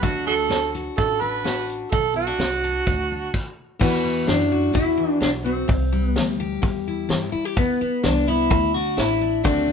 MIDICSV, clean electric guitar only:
0, 0, Header, 1, 2, 480
1, 0, Start_track
1, 0, Tempo, 470588
1, 35, Time_signature, 4, 2, 24, 8
1, 9917, End_track
2, 0, Start_track
2, 0, Title_t, "Clean electric guitar"
2, 0, Program_c, 0, 27
2, 3881, Note_on_c, 0, 59, 84
2, 4327, Note_off_c, 0, 59, 0
2, 4357, Note_on_c, 0, 62, 102
2, 4828, Note_off_c, 0, 62, 0
2, 4832, Note_on_c, 0, 64, 108
2, 5282, Note_off_c, 0, 64, 0
2, 5328, Note_on_c, 0, 62, 88
2, 5391, Note_off_c, 0, 62, 0
2, 5553, Note_on_c, 0, 60, 75
2, 6175, Note_off_c, 0, 60, 0
2, 6175, Note_on_c, 0, 59, 75
2, 6474, Note_off_c, 0, 59, 0
2, 7731, Note_on_c, 0, 59, 87
2, 8203, Note_on_c, 0, 62, 106
2, 8217, Note_off_c, 0, 59, 0
2, 8422, Note_off_c, 0, 62, 0
2, 8442, Note_on_c, 0, 64, 99
2, 8884, Note_off_c, 0, 64, 0
2, 8919, Note_on_c, 0, 66, 105
2, 9152, Note_on_c, 0, 64, 105
2, 9163, Note_off_c, 0, 66, 0
2, 9622, Note_off_c, 0, 64, 0
2, 9626, Note_on_c, 0, 62, 98
2, 9917, Note_off_c, 0, 62, 0
2, 9917, End_track
0, 0, End_of_file